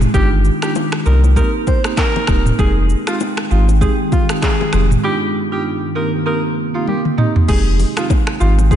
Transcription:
Already playing: D#3 G#3 G5
0.01 mid tom, shaker
0.14 G1 B3 D4 D#4 F4 G4, kick, low conga, shaker
0.45 shaker
0.62 B3 D4 D#4 F4 G4, finger snap, cross-stick, shaker
0.75 high bongo, shaker
0.92 finger snap, cross-stick
1.05 C2 C3 A#3 C4 D#4 G4 A#4, shaker
1.24 high bongo, shaker
1.36 A#3 C4 D#4 G4 A#4, kick, low conga, shaker
1.67 C5, kick, high bongo, low bongo, shaker
1.84 A#3 C4 D#4 G4, finger snap, cross-stick, shaker
1.97 A#4, finger snap, kick, cross-stick, clap, high bongo, shaker
2.16 low bongo
2.27 D#1 A#3 C4 D#4 G4, finger snap, kick, cross-stick, low conga, shaker
2.46 mid tom, shaker
2.59 F1 D#3 G#3 C4 D#4 G4 G#4 G5, kick, low conga, shaker
2.90 shaker
3.07 G#3 C4 D#4 F4 G4, finger snap, cross-stick, shaker
3.20 high bongo, shaker
3.37 finger snap, cross-stick
3.51 G#1 G#3 C4 D#4 F4 G4, shaker
3.69 high bongo, shaker
3.81 G#3 C4 D#4 G4 G#4, kick, low conga, shaker
4.12 F4, kick, high bongo, low bongo, shaker
4.29 G#3 C4 D#4 G4, finger snap, cross-stick, shaker
4.42 G#4, finger snap, kick, cross-stick, clap, high bongo, shaker
4.61 low bongo
4.73 F1 G#3 C4 D#4 G4, finger snap, cross-stick, low conga, shaker
4.91 mid tom, shaker
5.03 G2 B3 D4 D#4 F4 G4
5.52 G2 B3 D4 D#4 F4 G4
5.95 C3 A#3 C4 D#4 G4 A#4
6.26 A#3 C4 D#4 G4 A#4
6.74 A#3 C4 D#4 F4 G4
6.87 G4, high tom
7.05 mid tom
7.18 A#3 C4 D#4 G4, mid tom
7.36 floor tom
7.48 F1 D#3 G#3 C4 D#4 G4 G#4 G5, kick, crash, low conga, shaker
7.79 open hi-hat, low bongo, shaker
7.97 G#3 C4 D#4 F4 G4, finger snap, cross-stick, shaker
8.10 kick, high bongo, shaker
8.27 finger snap, cross-stick
8.40 G#1 G#3 C4 D#4 F4 G4, shaker
8.59 low bongo, shaker
8.71 G#3 C4 D#4 G4 G#4, kick, low conga, shaker

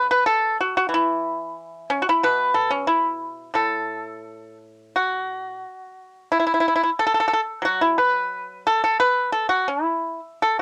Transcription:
Already playing: C#3
0.11 B4
0.26 A4
0.61 F#4
0.77 F#4
0.89 E3
0.94 E4
1.90 C#4
2.02 F#4
2.09 E4
2.23 B2 B4
2.54 A4
2.70 C#4
2.87 E4
3.54 A2 A4
4.96 F#4
6.32 E4
6.40 E4
6.47 E4
6.54 E4
6.60 E4
6.68 E4
6.76 E4
6.83 E4
6.99 A4
7.07 A4
7.14 A4
7.20 A4
7.28 A4
7.33 A4
7.62 F#3 F#4
7.81 E4
7.98 B4
8.67 A4
8.84 A4
9.00 B4
9.32 A4
9.49 F#4
9.68 E4
10.42 A4

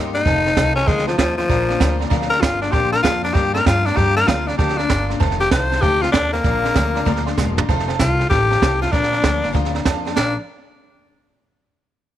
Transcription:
Already playing: G2 D#3 A#3 D#4 G4
0.14 A#3 D#4 G4 D#5 G5 A#5, snare
0.26 F1 F2 C3 D#3 A3 D#4 F4 C5 F5 A5, kick, snare
0.46 D#3 A3 D#4 F4 C5 F5 A5, snare
0.56 C2 D#3 A3 D#4 F4 C5 F5 A5, kick, snare, hi-hat pedal
0.75 D#3 A3 C#4 D#4 F4 C5 F5 A5, snare
0.86 D2 F2 C3 D#3 G#3 A3 D#4 F4 C5 F5 G5, kick, snare
0.98 snare
1.06 F3 A3 D#4 F4 C5 F5 A5, snare
1.10 D#3
1.18 D#2 D#3 F3 A3 D#4 F4 C5 F5, kick, snare, hi-hat pedal
1.37 D#3 F3 A3 D#4 F4 C5 F5 C6, snare
1.49 A#1 A#2 F3 A#3 D4 F4 D5 F5 A#5, kick, snare
1.69 A#3 D4 F4 D5 F5 A#5, snare
1.79 D2 F3 A#3 D4 F4 D5 F5 A#5, kick, snare, hi-hat pedal
1.99 A#3 D4 F4 D5 F5 A#5, snare
2.09 D2 A#2 F3 A#3 D4 F4 D5 F5 A#5, kick, snare
2.22 snare
2.30 D4 F4 A#4 D5 F5 G5, snare
2.34 A#3
2.41 G1 F3 A#3 D4 F4 F5 A#5, kick, snare, hi-hat pedal
2.61 A#3 D4 F4 D5 F5 A5, snare
2.71 A#1 A#2 F3 A#3 D4 F4 G4 D5 F5 C6, kick, snare
2.91 D4 F4 A#4 D5 F5 C6, snare
2.96 A#3
3.03 F2 F3 A#3 D4 F4 D5 F5 A5, kick, snare, hi-hat pedal
3.22 A#3 D4 F4 D5 F5 A#5, snare
3.33 G2 A#2 F3 A#3 D4 F4 G4 D5 F5 G5, kick, snare
3.53 A#3 D4 F4 A#4 D5 F5 A#5, snare
3.64 G2 F3 A#3 D4 F4 D5 F5 A#5, kick, snare, hi-hat pedal
3.84 D4 F4 D5 F5 A5, snare
3.89 A#3
3.94 G2 A#2 F3 A#3 G4 D5 F5 A#5, kick, snare
3.98 D4 F4
4.15 A#3 D4 F4 A#4 D5 F5 A#5, snare
4.27 D2 F3 A#3 D4 F4 D5 F5 A#5, kick, snare, hi-hat pedal
4.47 A#3 D4 F4 D5 F5 A#5, snare
4.58 D2 A#2 F3 A#3 D4 F4 G4 D5 F5 A5, kick, snare
4.69 snare
4.77 D4 F4 D5 F5 A#5, snare
4.82 A#3
4.89 G1 F3 A#3 D4 F4 D5 F5 A#5, kick, snare, hi-hat pedal
5.09 A#3 D4 F4 D5 F5 A#5, snare
5.20 F1 F2 C3 D#3 A3 D#4 F4 C5 F5 A5, kick, snare
5.31 snare
5.40 D#3 A3 D#4 F4 G4 C5 F5 G5, snare
5.51 C2 D#3 A3 D#4 F4 C5 F5 A5, kick, snare, hi-hat pedal
5.70 D#3 A3 D#4 F4 C5 F5 A5, snare
5.81 D2 F2 C3 D#3 A3 D#4 F4 G4 C5 F5 A5, kick, snare
6.01 D#3 A3 D#4 F4 C5 F5 C6, snare
6.12 D#2 D#3 A3 D4 C5 F5 A5, kick, snare, hi-hat pedal
6.32 D#3 A3 A#3 D#4 F4 C5 F5 G5, snare
6.44 A#1 A#2 F3 A#3 D4 F4 D5 F5 A#5, kick, snare
6.63 A#3 D4 F4 D5 F5 A#5, snare
6.74 D2 F3 A#3 D4 F4 D5 F5 A#5, kick, snare, hi-hat pedal
6.94 A#3 D4 F4 D5 F5 A#5, snare
7.05 D2 A#2 F3 A#3 D4 F4 D5 F5 A#5, kick, snare
7.16 snare
7.25 A#3 D4 F4 D5 F5 C6, snare
7.37 E1 F3 A#3 D4 F4 D5 F5 C6, kick, snare, hi-hat pedal
7.57 A#3 D4 F4 D5 F5 A#5, floor tom
7.69 F1 F2 C3 D#3 A3 D#4 F4 C5 F5 A5, kick, snare
7.79 snare
7.88 D#3 A3 D#4 F4 C5 F5 A5, snare
7.99 C2 D#3 A3 D#4 F4 C5 F5, kick, snare, hi-hat pedal
8.19 D#3 A3 D#4 F4 C5 F5 G5, snare
8.30 A1 F2 C3 D#3 A3 D#4 F4 G4 C5 F5 A5, kick, snare
8.50 D#3 A3 D#4 F4 C5 F5 A5, snare
8.61 C2 D#3 A3 D#4 F4 C5 F5 A5, kick, snare, hi-hat pedal
8.80 A3 D#4 F4 C5 F5 A5, snare
8.84 D#3
8.92 A#1 A#2 F3 A#3 D4 F4 D5 F5 A#5, kick, snare
9.03 snare
9.11 A#3 D4 F4 D5 F5 A#5, snare
9.22 D2 F3 A#3 D4 F4 F5 A#5, kick, snare, hi-hat pedal
9.42 G1 A#3 D4 F4 D5 F5 A#5, snare
9.52 D2 A#2 F3 A#3 D4 F4 D5 F5 A#5, kick, snare
9.65 snare
9.72 A#3 D4 F4 D5 F5 A#5, snare
9.84 F2 F3 A#3 D4 F4 D5 F5 A5, kick, snare, hi-hat pedal
10.05 A#3 D4 F4 D5 F5 A5, snare
10.16 A#1 A#2 F3 A#3 D4 F4 D5 F5 A#5, snare, splash

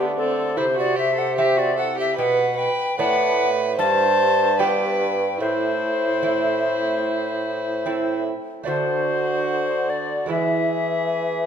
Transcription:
Already playing: D3 A3 B3 D4
0.17 C4 A4
0.56 C3 E4 C5
0.76 F#4 D5
0.96 G4 E5
1.16 A4 F#5
1.36 C4 E4 G4 E5
1.57 F#4 D5
1.76 A4 F#5
1.98 G4 E5
2.17 B2 B4 G5
2.23 F#5
2.57 B4 G5
2.98 A2 B3 D4 B4 F#5
3.78 G2 C5 A5
4.59 B3 D4 G4 B4 G5
5.40 A2 E4 C5
6.23 A3 C4 E4
7.86 A3 C4 E4
8.64 D3 A3 D4 F#4 C5
8.68 D3
9.90 D5
10.26 E3 G#3 B3 E4 E5
10.31 G#4

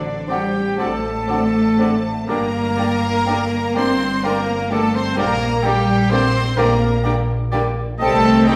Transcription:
Already playing: A1 D3 D4 D5
0.28 D3 F#3 G3 C4 D4 G4 D5 F#5 G5
0.78 A1 D3 F#3 A3 C4 D4 A4 D5 F#5 A5
1.28 D3 F#3 C4 D4 D5 F#5
1.78 D3 F#3 C4 D4 D5 F#5
2.27 G1 D3 G3 A#3 D4 A#4 D5 G5 A#5
2.76 D3 G3 A#3 D4 D5 G5
3.26 D3 G3 A#3 D4 D5 G5
3.75 G1 D3 G3 A#3 C4 D4 C5 D5 G5 C6
4.22 D3 G3 A#3 D4 A#4 D5 G5 A#5
4.68 D3 G3 A3 A#3 D4 A4 D5 G5 A5
4.92 C4 C5
4.96 C6
5.15 A#1 D3 G3 A#3 G4 A#4 D5 G5
5.19 A#5
5.62 D3 G3 A#3 G4 D5 G5
6.10 D3 G3 A#3 C4 G4 C5 D5 G5 C6
6.57 A#1 D3 G3 A#3 G4 A#4 D5 G5 A#5
7.04 D3 G3 A#3 G4 D5 G5
7.52 D3 G3 A#3 G4 D5 G5
7.98 C2 D#3 G3 A3 C4 G4 A4 D#5 G5 A5
8.24 C4
8.45 G3 C4 D#4 G4 D#5 G5

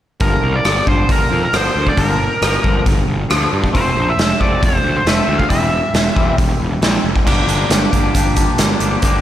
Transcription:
0.20 G1 G2 D3 F3 A#4, kick, open hi-hat
0.43 C2 G2 D3
0.56 D5
0.65 G1 G2 D3, cross-stick, open hi-hat
0.86 G1 G2 D3 F3 C5, kick
1.09 G1 G2 D3 A#4, kick, open hi-hat
1.30 F2 G2 D3
1.45 A#4
1.52 G1 G2 D3 F3 C5, cross-stick, open hi-hat
1.75 D2 G2 D3
1.87 D5, kick
1.97 G1 G2 D3 F3 A#4, kick, open hi-hat
2.19 G2 D3
2.41 G1 G2 D3, cross-stick, open hi-hat
2.63 G1 G2 D3 F3, kick
2.85 G1 G2 D3, kick, open hi-hat
3.07 G1 G2 D3
3.29 D2 G2 D3 F3, cross-stick, open hi-hat
3.51 G2 D3
3.64 kick
3.73 F1 F3 A3 C4 C5, kick, open hi-hat
3.96 A#1 F3 A3
4.10 E5
4.17 F1 F3 A3, snare, open hi-hat
4.39 F1 F3 A3 C4 D5, kick
4.62 F1 F3 A3 C5, kick, open hi-hat
4.83 D2 F3 A3
4.97 C5
5.05 F1 F3 A3 C4 E5, snare, open hi-hat
5.28 D2 F3 A3
5.39 F5, kick
5.50 E1 E3 G3 C4 E5, kick, open hi-hat
5.72 E3 G3
5.94 E1 E3 G3, snare, open hi-hat
6.15 E1 E3 G3 C4, kick
6.38 E1 E3 G3, kick, open hi-hat
6.60 E1 E3 G3
6.82 A#1 E3 G3 C4, snare, open hi-hat
7.04 F1 E3 G3
7.16 kick
7.25 G1 G2 D3 F3 A#3 D4 G4, kick, crash
7.48 G1, closed hi-hat
7.69 G1 G2 D3 F3 A#3 D4 G4, snare, closed hi-hat
7.92 G1 F3 A#3 D4 G4, kick, closed hi-hat
8.14 G1 F3 A#3 D4 G4, kick, closed hi-hat
8.36 F3 A#3 D4 G4, kick, closed hi-hat
8.58 G1, snare, closed hi-hat
8.80 G1 F3 A#3 D4 G4, closed hi-hat
9.02 G1 G2 D3 F3 A#3 D4 G4, kick, closed hi-hat

